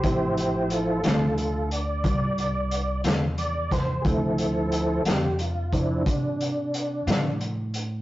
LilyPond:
<<
  \new Staff \with { instrumentName = "Tonewheel organ" } { \time 12/8 \key d \minor \tempo 4. = 60 << { <g' c''>8 <g' c''>8 <f' a'>8 <f' a'>8 <f' a'>8 d''2 r8 d''8 c''8 | <gis' a'>4. g'8 f'8 d'8 <cis' d'>2 r4 | } \\ { <f c' e'>4. r1 r8 | <f c' e'>4. r4 <f c' e'>8 r2. | } >> }
  \new Staff \with { instrumentName = "Clean electric guitar" } { \time 12/8 \key d \minor r4. <d a c' f'>8 r2 r8 <d a c' f'>8 r4 | r4. <d a c' f'>8 r2 r8 <d a c' f'>8 r4 | }
  \new Staff \with { instrumentName = "Upright bass" } { \clef bass \time 12/8 \key d \minor a,,4. d,4. c,4. e,4. | d,4. f,4. c4. a,4. | }
  \new DrumStaff \with { instrumentName = "Drums" } \drummode { \time 12/8 <hh bd>8 hh8 hh8 <hh sn>8 hh8 hh8 <hh bd>8 hh8 hh8 <hh sn>8 hh8 <hh bd sn>8 | <hh bd>8 hh8 hh8 <hh sn>8 hh8 <hh bd>8 <hh bd>8 hh8 hh8 <hh sn>8 hh8 hh8 | }
>>